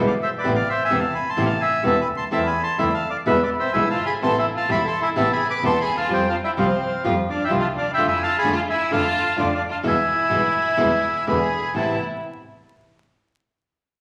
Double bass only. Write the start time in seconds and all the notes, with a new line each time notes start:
0.00 B1
0.47 A1
0.92 E1
1.39 A1
1.85 E1
2.10 D2
2.33 E2
2.80 E2
3.28 E2
3.74 B1
3.97 G1
4.22 A1
4.70 E1
5.17 A1
5.64 E1
5.87 D#2
6.11 F2
6.58 C2
7.05 F2
7.52 C2
7.76 D#2
8.00 F2
8.46 F2
8.93 F2
9.39 F2
9.85 E2
10.32 B1
10.80 E2
11.27 E2
11.76 A1